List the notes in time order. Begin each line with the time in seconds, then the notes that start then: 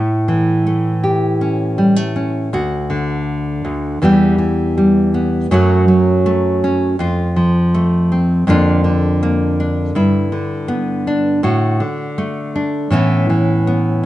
Already playing: A2 A3 E4
0.28 E3
0.67 A3
1.04 G4
1.41 C#4
1.78 G3
1.96 A3
2.16 C#4
2.53 D2 F#4
2.90 D3
3.65 D2
4.02 E2 E3 G3 B3 G4
4.38 E3
4.78 G3
5.14 B3
5.51 F#2 F#3 A3 C#4 F#4
5.88 F#3
6.26 A3
6.64 C#4
6.99 F2 F4
7.36 F3
7.74 A3
8.12 C4
8.47 F2 D3 A#3 D4 F4
8.84 D3
9.23 A#3
9.60 D4
9.95 G2 E4
10.32 D3
10.68 B3
11.07 D4
11.43 A2 F#4
11.80 D3
12.18 A3
12.56 D4
12.90 A2 E3 B3 C#4 E4
13.30 E3
13.67 B3